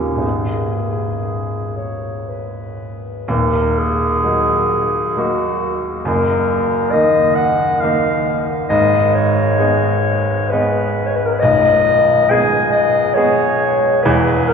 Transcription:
Already playing: D#2 A#2 A#3 C#4 G4
0.16 G#1 G#3 B3 D#4
0.24 G#4
1.76 C#5
2.29 B4
3.28 D#1 D#2 A#4
3.78 G#4
4.24 F#3 A#3 D#4
5.17 F#3 A#3 D#4 F#4
6.05 F#1 F#2 A#4
6.91 D#3 A#3 D#4 D#5
7.35 F#5
7.80 D#3 A#3 D#4 F5
8.69 G#1 G#2 D#5
9.14 C#5
9.59 G#3 B3 D#4
10.50 G#3 B3 D#4 B4
11.06 C#5
11.16 B4
11.26 A#4
11.32 B4
11.40 B0 B1 D#5
12.30 G#3 B3 G#4 G#5
12.71 D#5
13.14 G#3 B3 G#4 C#5
14.03 E1 E2 B4
14.48 A#4

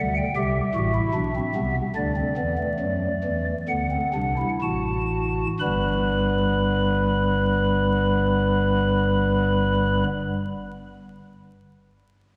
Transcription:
Already playing: D2 G3
0.00 D3 F#5
0.16 G5
0.36 C2 C3 G4 E5
0.75 A1 A2 F#4
0.94 E4
1.14 B1 B2 D4
1.36 C4
1.55 C2 C3 B3
1.95 D2 D3 D4 D5
2.16 C4
2.37 E2 E3 B3
2.58 A3
2.79 F#2 F#3
3.24 E2 E3
3.68 D2 D3 B3 F#5
3.91 C4
4.14 C2 C3 D4
4.38 E4
4.62 A1 A2 F#4 A5
5.60 G1 G2 G3 B3 B4 B5

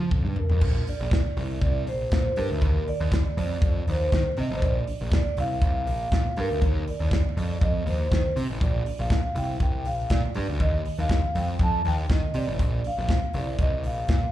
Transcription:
0.11 F2, kick, mid tom
0.25 G2
0.36 A#4, floor tom
0.50 F2, floor tom
0.61 A#1, kick, crash
0.87 D5, open hi-hat
1.00 A#1
1.11 kick, snare, closed hi-hat
1.37 C2, open hi-hat
1.62 C2 D5, kick, closed hi-hat
1.87 A#1 C5, open hi-hat
2.12 A#2, kick, snare, closed hi-hat
2.36 G2 A#4, open hi-hat
2.51 D2
2.62 D#2, kick, closed hi-hat
2.88 D5, open hi-hat
3.00 D#2
3.12 kick, snare, closed hi-hat
3.37 F2 D5, open hi-hat
3.62 F2 D5, kick, closed hi-hat
3.88 D#2 C5, open hi-hat
4.12 D#3, kick, snare, closed hi-hat
4.37 C3 D#5, open hi-hat
4.51 A1 C5
4.62 A#1 D5, kick, closed hi-hat
4.88 open hi-hat
5.01 A#1
5.12 D5, kick, snare, closed hi-hat
5.37 C2 F5, open hi-hat
5.62 C2, kick, closed hi-hat
5.87 A#1, open hi-hat
6.12 A#2, kick, snare, closed hi-hat
6.37 G2 A#4, open hi-hat
6.51 D2
6.62 D#2, kick, closed hi-hat
6.88 D5, open hi-hat
7.00 D#2
7.11 kick, snare, closed hi-hat
7.37 F2, open hi-hat
7.61 F2 D#5, kick, closed hi-hat
7.86 D#2 C5, open hi-hat
8.12 D#3, kick, snare, closed hi-hat
8.36 C3, open hi-hat
8.50 A1
8.61 A#1 D5, kick, closed hi-hat
8.86 open hi-hat
8.99 A#1 F5
9.10 kick, snare, closed hi-hat
9.35 C2 G5, open hi-hat
9.60 C2 G5, kick, closed hi-hat
9.85 A#1 F5, open hi-hat
10.10 A#2 D5, kick, snare, closed hi-hat
10.35 G2, open hi-hat
10.49 D2
10.60 D#2 D#5, kick, closed hi-hat
10.85 open hi-hat
10.98 D#2 F5
11.09 kick, snare, closed hi-hat
11.35 F2 G5, open hi-hat
11.59 F2 A5, kick, closed hi-hat
11.85 D#2 G5, open hi-hat
12.10 D#3 D#5, kick, snare, closed hi-hat
12.34 C3 D5, open hi-hat
12.48 A1
12.59 A#1, kick, closed hi-hat
12.84 F5, open hi-hat
12.98 A#1
13.09 kick, snare, closed hi-hat
13.33 C2 D5, open hi-hat
13.59 C2 D#5, kick, closed hi-hat
13.84 A#1 F5, open hi-hat
14.08 A#2, kick, snare, closed hi-hat

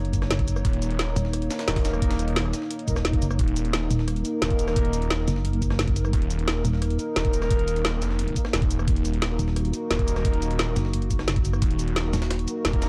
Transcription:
Already playing: F#1 A#3 D#4 C#5
0.05 closed hi-hat
0.13 kick, closed hi-hat, shaker
0.22 cross-stick, snare
0.31 snare, closed hi-hat
0.39 kick, closed hi-hat
0.48 closed hi-hat, shaker
0.56 cross-stick, shaker
0.65 D#1, kick, closed hi-hat
0.73 closed hi-hat
0.82 closed hi-hat, shaker
0.91 closed hi-hat
0.99 snare, closed hi-hat
1.08 A#3 D#4 A#4
1.16 D#1, closed hi-hat, shaker
1.25 snare
1.33 cross-stick, closed hi-hat
1.42 closed hi-hat
1.51 A#3 D#4 A#4, snare, closed hi-hat, shaker
1.59 snare, closed hi-hat
1.68 D#1, snare, closed hi-hat
1.76 kick, snare, closed hi-hat
1.85 snare, closed hi-hat, shaker
1.93 cross-stick, shaker
2.02 D#1, kick, closed hi-hat
2.11 snare, closed hi-hat
2.19 closed hi-hat, shaker
2.28 closed hi-hat
2.36 snare, closed hi-hat
2.45 A#3 D#4 A#4, cross-stick
2.53 snare, closed hi-hat, shaker
2.62 snare
2.70 closed hi-hat, swell
2.79 closed hi-hat
2.88 D#1 A#3 D#4 A#4, kick, closed hi-hat, shaker
2.96 cross-stick, snare, shaker
3.05 snare, closed hi-hat
3.13 A#3 D#4 A#4, kick, closed hi-hat
3.22 F#1, closed hi-hat, shaker
3.31 cross-stick, shaker
3.39 D#1 A#4, kick, closed hi-hat
3.48 closed hi-hat
3.56 closed hi-hat, shaker
3.65 closed hi-hat
3.73 snare, closed hi-hat
3.82 A#3 D#4 A#4
3.90 D#1, closed hi-hat, shaker
3.99 snare
4.08 cross-stick, closed hi-hat
4.16 closed hi-hat
4.25 A#3 D#4 A#4, closed hi-hat, shaker
4.42 D#1, snare, closed hi-hat
4.50 kick, closed hi-hat
4.59 closed hi-hat, shaker
4.68 cross-stick, snare, shaker
4.76 D#1, kick, closed hi-hat
4.85 closed hi-hat
4.93 closed hi-hat, shaker
5.02 closed hi-hat
5.10 snare, closed hi-hat
5.19 A#3 D#4 A#4
5.28 F#1, snare, closed hi-hat, shaker
5.36 snare
5.45 closed hi-hat
5.53 closed hi-hat
5.62 kick, closed hi-hat, shaker
5.70 cross-stick, snare
5.79 snare, closed hi-hat
5.88 kick, closed hi-hat
5.96 closed hi-hat, shaker
6.05 cross-stick, shaker
6.13 D#1, kick, closed hi-hat
6.22 closed hi-hat
6.30 closed hi-hat, shaker
6.39 closed hi-hat
6.48 snare, closed hi-hat
6.56 A#3 D#4 A#4
6.65 D#1, closed hi-hat, shaker
6.73 snare
6.82 cross-stick, closed hi-hat
6.90 closed hi-hat
6.99 A#3 D#4 A#4, closed hi-hat, shaker
7.16 D#1, snare, closed hi-hat
7.25 kick, closed hi-hat
7.33 closed hi-hat, shaker
7.42 cross-stick, snare, shaker
7.50 D#1, kick, closed hi-hat
7.59 closed hi-hat
7.68 closed hi-hat, shaker
7.76 closed hi-hat
7.85 snare, closed hi-hat
7.93 A#3 D#4 A#4
8.02 F1, snare, closed hi-hat, shaker
8.10 snare
8.19 closed hi-hat
8.28 closed hi-hat
8.36 A#3 D#4 A#4, kick, closed hi-hat, shaker
8.45 cross-stick, snare
8.53 D#1, snare, closed hi-hat
8.62 kick, closed hi-hat
8.71 closed hi-hat, shaker
8.79 cross-stick, shaker
8.88 D#1 F#4, kick, closed hi-hat
8.96 closed hi-hat
9.05 closed hi-hat, shaker
9.14 closed hi-hat
9.22 snare, closed hi-hat
9.31 A#3 D#4 A#4
9.39 D#1, closed hi-hat, shaker
9.48 snare
9.56 cross-stick, closed hi-hat
9.65 closed hi-hat
9.73 A#3 D#4 A#4, closed hi-hat, shaker
9.90 D#1, snare, closed hi-hat
9.99 kick, closed hi-hat
10.08 closed hi-hat, shaker
10.16 cross-stick, snare, shaker
10.25 D#1, kick, closed hi-hat
10.34 closed hi-hat
10.42 closed hi-hat, shaker
10.51 closed hi-hat
10.59 snare, closed hi-hat
10.68 A#3 D#4 A#4
10.76 F#1, snare, closed hi-hat, shaker
10.85 snare
10.93 closed hi-hat
11.02 closed hi-hat
11.11 kick, closed hi-hat, shaker
11.19 cross-stick, snare
11.28 snare, closed hi-hat
11.36 kick, closed hi-hat
11.45 closed hi-hat, shaker
11.53 cross-stick, shaker
11.62 D#1, kick, closed hi-hat
11.71 closed hi-hat
11.79 closed hi-hat, shaker
11.88 closed hi-hat
11.96 snare, closed hi-hat
12.05 A#3 D#4 A#4
12.13 D#1, snare, closed hi-hat, shaker
12.22 snare, closed hi-hat
12.30 cross-stick, snare, closed hi-hat
12.39 closed hi-hat
12.48 A#3 D#4 A#4, closed hi-hat, shaker
12.65 D#1, snare, closed hi-hat
12.73 kick, closed hi-hat
12.82 snare, closed hi-hat, shaker

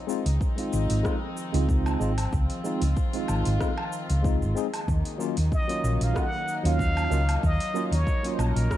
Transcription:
Already playing: D#3 F3 C4 D#4
0.07 G#3 C4 D#4 F4, cabasa
0.26 C#2, open hi-hat, cabasa
0.41 kick, cabasa
0.56 G#3 C4 D#4 F4, open hi-hat, cabasa
0.73 G#1, cabasa
0.90 G#1, open hi-hat, cabasa
1.03 G#3 C4 D#4 F4, kick, cross-stick, cabasa
1.37 cabasa
1.53 C#2 G#3 C4 D#4 F4, open hi-hat, cabasa
1.69 kick, cabasa
1.86 cabasa, low woodblock
2.00 G#1 G#3 C4 D#4 F4, cabasa
2.18 open hi-hat, cabasa, low woodblock
2.32 C#2 F4, kick, cabasa
2.50 open hi-hat
2.64 G#3 C4 D#4 F4, cabasa
2.82 C#2, open hi-hat, cabasa
2.97 kick, cabasa
3.13 G#3 C4 D#4 F4, open hi-hat, cabasa
3.28 G#1, cabasa, low woodblock
3.45 G#1, open hi-hat, cabasa
3.59 G#3 C4 D#4 F4, kick, cross-stick, cabasa
3.78 low woodblock
3.93 cabasa
4.10 C#2, open hi-hat, cabasa
4.22 G#3 C4 D#4 F4, kick, cabasa
4.42 G#1, cabasa
4.55 G#3 C4 D#4 G#4, cabasa
4.74 open hi-hat, cabasa, low woodblock
4.88 D#2 F#3 A#3 D#4, kick, cabasa
5.05 open hi-hat
5.18 F#3 A#3 C#4 F4, cabasa
5.37 D#2, open hi-hat, cabasa
5.52 D#5, kick, cabasa
5.68 F#3 A#3 C#4 F4, open hi-hat, cabasa
5.84 A#1, cabasa
6.01 A#1 F5, open hi-hat, cabasa
6.14 F#3 A#3 C#4 F4, kick, cross-stick, cabasa
6.18 F#5
6.48 cabasa
6.63 D#2 F#3 A#3 C#4 F4 F5, open hi-hat, cabasa
6.79 kick, cabasa
6.97 cabasa, low woodblock
7.10 C#2 F#3 A#3 C#4 F4, cabasa
7.29 open hi-hat, cabasa, low woodblock
7.43 D#2 D#5, kick, cabasa
7.60 open hi-hat
7.74 F#3 A#3 C#4 F4, cabasa
7.92 D#2 C#5, open hi-hat, cabasa
8.07 kick, cabasa
8.23 F#3 A#3 C#4 F4, open hi-hat, cabasa
8.33 C5
8.39 A#1 A#4, cabasa, low woodblock
8.56 A#1, open hi-hat, cabasa
8.70 F#3 A#3 C#4 F4, kick, cross-stick, cabasa

